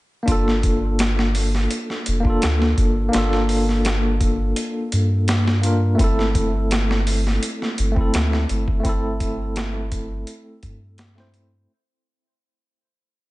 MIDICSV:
0, 0, Header, 1, 4, 480
1, 0, Start_track
1, 0, Tempo, 714286
1, 186, Time_signature, 4, 2, 24, 8
1, 8944, End_track
2, 0, Start_track
2, 0, Title_t, "Tine electric piano"
2, 0, Program_c, 0, 4
2, 154, Note_on_c, 0, 58, 89
2, 174, Note_on_c, 0, 62, 84
2, 192, Note_on_c, 0, 65, 80
2, 213, Note_on_c, 0, 69, 101
2, 306, Control_c, 0, 64, 127
2, 1465, Note_off_c, 0, 58, 0
2, 1475, Note_off_c, 0, 62, 0
2, 1480, Note_on_c, 0, 58, 81
2, 1484, Note_off_c, 0, 65, 0
2, 1495, Note_off_c, 0, 69, 0
2, 1500, Note_on_c, 0, 62, 69
2, 1521, Note_on_c, 0, 65, 74
2, 1543, Note_on_c, 0, 69, 81
2, 2063, Note_off_c, 0, 58, 0
2, 2073, Note_off_c, 0, 62, 0
2, 2074, Note_on_c, 0, 58, 87
2, 2083, Note_off_c, 0, 65, 0
2, 2094, Note_off_c, 0, 69, 0
2, 2096, Note_on_c, 0, 62, 77
2, 2115, Note_on_c, 0, 65, 77
2, 2135, Note_on_c, 0, 69, 95
2, 3743, Note_off_c, 0, 58, 0
2, 3753, Note_off_c, 0, 62, 0
2, 3763, Note_off_c, 0, 65, 0
2, 3773, Note_off_c, 0, 69, 0
2, 3773, Note_on_c, 0, 58, 79
2, 3785, Note_on_c, 0, 62, 74
2, 3792, Note_on_c, 0, 65, 74
2, 3805, Note_on_c, 0, 70, 82
2, 3992, Note_off_c, 0, 58, 0
2, 3998, Note_off_c, 0, 62, 0
2, 3999, Note_on_c, 0, 57, 97
2, 4001, Note_off_c, 0, 65, 0
2, 4008, Note_off_c, 0, 70, 0
2, 4018, Note_on_c, 0, 60, 82
2, 4036, Control_c, 0, 64, 0
2, 4037, Note_on_c, 0, 64, 84
2, 4058, Note_on_c, 0, 69, 105
2, 4164, Control_c, 0, 64, 127
2, 5308, Note_off_c, 0, 57, 0
2, 5317, Note_off_c, 0, 60, 0
2, 5321, Note_on_c, 0, 57, 82
2, 5327, Note_off_c, 0, 64, 0
2, 5337, Note_off_c, 0, 69, 0
2, 5340, Note_on_c, 0, 60, 71
2, 5361, Note_on_c, 0, 64, 73
2, 5381, Note_on_c, 0, 69, 84
2, 5903, Note_off_c, 0, 57, 0
2, 5913, Note_off_c, 0, 60, 0
2, 5915, Note_on_c, 0, 57, 84
2, 5923, Note_off_c, 0, 64, 0
2, 5933, Note_off_c, 0, 69, 0
2, 5934, Note_on_c, 0, 60, 81
2, 5954, Note_on_c, 0, 64, 80
2, 5975, Note_on_c, 0, 69, 93
2, 7471, Note_off_c, 0, 57, 0
2, 7480, Note_off_c, 0, 60, 0
2, 7490, Note_off_c, 0, 64, 0
2, 7498, Note_on_c, 0, 57, 80
2, 7501, Note_off_c, 0, 69, 0
2, 7507, Note_on_c, 0, 60, 78
2, 7516, Note_on_c, 0, 64, 72
2, 7527, Note_on_c, 0, 72, 90
2, 7832, Note_off_c, 0, 57, 0
2, 7836, Note_off_c, 0, 60, 0
2, 7841, Note_off_c, 0, 64, 0
2, 7846, Note_off_c, 0, 72, 0
2, 7875, Control_c, 0, 64, 0
2, 8944, End_track
3, 0, Start_track
3, 0, Title_t, "Sub bass"
3, 0, Program_c, 1, 38
3, 191, Note_on_c, 1, 31, 91
3, 1126, Note_off_c, 1, 31, 0
3, 1395, Note_on_c, 1, 29, 101
3, 1603, Note_off_c, 1, 29, 0
3, 1636, Note_on_c, 1, 38, 80
3, 1843, Note_off_c, 1, 38, 0
3, 1870, Note_on_c, 1, 31, 103
3, 2080, Note_off_c, 1, 31, 0
3, 2112, Note_on_c, 1, 31, 91
3, 3047, Note_off_c, 1, 31, 0
3, 3311, Note_on_c, 1, 43, 89
3, 4007, Note_off_c, 1, 43, 0
3, 4028, Note_on_c, 1, 31, 95
3, 4965, Note_off_c, 1, 31, 0
3, 5234, Note_on_c, 1, 31, 100
3, 5442, Note_off_c, 1, 31, 0
3, 5472, Note_on_c, 1, 38, 84
3, 5682, Note_off_c, 1, 38, 0
3, 5711, Note_on_c, 1, 31, 102
3, 5921, Note_off_c, 1, 31, 0
3, 5948, Note_on_c, 1, 31, 99
3, 6885, Note_off_c, 1, 31, 0
3, 7144, Note_on_c, 1, 43, 87
3, 7843, Note_off_c, 1, 43, 0
3, 8944, End_track
4, 0, Start_track
4, 0, Title_t, "Drums"
4, 186, Note_on_c, 9, 36, 99
4, 186, Note_on_c, 9, 42, 80
4, 253, Note_off_c, 9, 36, 0
4, 253, Note_off_c, 9, 42, 0
4, 322, Note_on_c, 9, 38, 41
4, 389, Note_off_c, 9, 38, 0
4, 426, Note_on_c, 9, 36, 88
4, 426, Note_on_c, 9, 42, 61
4, 493, Note_off_c, 9, 36, 0
4, 493, Note_off_c, 9, 42, 0
4, 665, Note_on_c, 9, 42, 77
4, 672, Note_on_c, 9, 38, 102
4, 732, Note_off_c, 9, 42, 0
4, 740, Note_off_c, 9, 38, 0
4, 798, Note_on_c, 9, 38, 56
4, 866, Note_off_c, 9, 38, 0
4, 906, Note_on_c, 9, 46, 74
4, 973, Note_off_c, 9, 46, 0
4, 1039, Note_on_c, 9, 38, 36
4, 1106, Note_off_c, 9, 38, 0
4, 1146, Note_on_c, 9, 42, 80
4, 1213, Note_off_c, 9, 42, 0
4, 1277, Note_on_c, 9, 38, 36
4, 1344, Note_off_c, 9, 38, 0
4, 1385, Note_on_c, 9, 42, 65
4, 1452, Note_off_c, 9, 42, 0
4, 1511, Note_on_c, 9, 36, 83
4, 1578, Note_off_c, 9, 36, 0
4, 1626, Note_on_c, 9, 42, 80
4, 1633, Note_on_c, 9, 38, 107
4, 1693, Note_off_c, 9, 42, 0
4, 1701, Note_off_c, 9, 38, 0
4, 1759, Note_on_c, 9, 38, 46
4, 1826, Note_off_c, 9, 38, 0
4, 1865, Note_on_c, 9, 36, 75
4, 1866, Note_on_c, 9, 42, 55
4, 1933, Note_off_c, 9, 36, 0
4, 1933, Note_off_c, 9, 42, 0
4, 2105, Note_on_c, 9, 42, 74
4, 2113, Note_on_c, 9, 38, 92
4, 2173, Note_off_c, 9, 42, 0
4, 2180, Note_off_c, 9, 38, 0
4, 2237, Note_on_c, 9, 38, 49
4, 2305, Note_off_c, 9, 38, 0
4, 2345, Note_on_c, 9, 46, 66
4, 2412, Note_off_c, 9, 46, 0
4, 2480, Note_on_c, 9, 38, 31
4, 2547, Note_off_c, 9, 38, 0
4, 2586, Note_on_c, 9, 42, 81
4, 2594, Note_on_c, 9, 38, 107
4, 2653, Note_off_c, 9, 42, 0
4, 2661, Note_off_c, 9, 38, 0
4, 2826, Note_on_c, 9, 36, 91
4, 2827, Note_on_c, 9, 42, 64
4, 2893, Note_off_c, 9, 36, 0
4, 2894, Note_off_c, 9, 42, 0
4, 3066, Note_on_c, 9, 42, 88
4, 3134, Note_off_c, 9, 42, 0
4, 3307, Note_on_c, 9, 42, 62
4, 3375, Note_off_c, 9, 42, 0
4, 3547, Note_on_c, 9, 42, 80
4, 3554, Note_on_c, 9, 38, 107
4, 3614, Note_off_c, 9, 42, 0
4, 3622, Note_off_c, 9, 38, 0
4, 3679, Note_on_c, 9, 38, 55
4, 3747, Note_off_c, 9, 38, 0
4, 3786, Note_on_c, 9, 42, 66
4, 3853, Note_off_c, 9, 42, 0
4, 4026, Note_on_c, 9, 36, 109
4, 4028, Note_on_c, 9, 42, 79
4, 4093, Note_off_c, 9, 36, 0
4, 4095, Note_off_c, 9, 42, 0
4, 4160, Note_on_c, 9, 38, 41
4, 4227, Note_off_c, 9, 38, 0
4, 4266, Note_on_c, 9, 36, 89
4, 4267, Note_on_c, 9, 42, 65
4, 4333, Note_off_c, 9, 36, 0
4, 4334, Note_off_c, 9, 42, 0
4, 4509, Note_on_c, 9, 42, 81
4, 4516, Note_on_c, 9, 38, 101
4, 4576, Note_off_c, 9, 42, 0
4, 4583, Note_off_c, 9, 38, 0
4, 4642, Note_on_c, 9, 38, 55
4, 4709, Note_off_c, 9, 38, 0
4, 4750, Note_on_c, 9, 46, 80
4, 4817, Note_off_c, 9, 46, 0
4, 4884, Note_on_c, 9, 38, 37
4, 4951, Note_off_c, 9, 38, 0
4, 4990, Note_on_c, 9, 42, 86
4, 5058, Note_off_c, 9, 42, 0
4, 5122, Note_on_c, 9, 38, 38
4, 5189, Note_off_c, 9, 38, 0
4, 5228, Note_on_c, 9, 42, 70
4, 5296, Note_off_c, 9, 42, 0
4, 5352, Note_on_c, 9, 36, 90
4, 5419, Note_off_c, 9, 36, 0
4, 5468, Note_on_c, 9, 42, 80
4, 5476, Note_on_c, 9, 38, 109
4, 5536, Note_off_c, 9, 42, 0
4, 5543, Note_off_c, 9, 38, 0
4, 5599, Note_on_c, 9, 38, 51
4, 5667, Note_off_c, 9, 38, 0
4, 5708, Note_on_c, 9, 42, 65
4, 5775, Note_off_c, 9, 42, 0
4, 5831, Note_on_c, 9, 36, 90
4, 5898, Note_off_c, 9, 36, 0
4, 5945, Note_on_c, 9, 36, 107
4, 5945, Note_on_c, 9, 42, 82
4, 6012, Note_off_c, 9, 36, 0
4, 6012, Note_off_c, 9, 42, 0
4, 6185, Note_on_c, 9, 36, 85
4, 6185, Note_on_c, 9, 42, 62
4, 6252, Note_off_c, 9, 36, 0
4, 6252, Note_off_c, 9, 42, 0
4, 6424, Note_on_c, 9, 42, 78
4, 6431, Note_on_c, 9, 38, 115
4, 6491, Note_off_c, 9, 42, 0
4, 6498, Note_off_c, 9, 38, 0
4, 6664, Note_on_c, 9, 36, 86
4, 6664, Note_on_c, 9, 42, 69
4, 6731, Note_off_c, 9, 36, 0
4, 6731, Note_off_c, 9, 42, 0
4, 6902, Note_on_c, 9, 42, 84
4, 6969, Note_off_c, 9, 42, 0
4, 7141, Note_on_c, 9, 42, 62
4, 7143, Note_on_c, 9, 36, 84
4, 7208, Note_off_c, 9, 42, 0
4, 7210, Note_off_c, 9, 36, 0
4, 7378, Note_on_c, 9, 42, 85
4, 7386, Note_on_c, 9, 38, 106
4, 7446, Note_off_c, 9, 42, 0
4, 7453, Note_off_c, 9, 38, 0
4, 7513, Note_on_c, 9, 38, 58
4, 7581, Note_off_c, 9, 38, 0
4, 7618, Note_on_c, 9, 42, 69
4, 7686, Note_off_c, 9, 42, 0
4, 8944, End_track
0, 0, End_of_file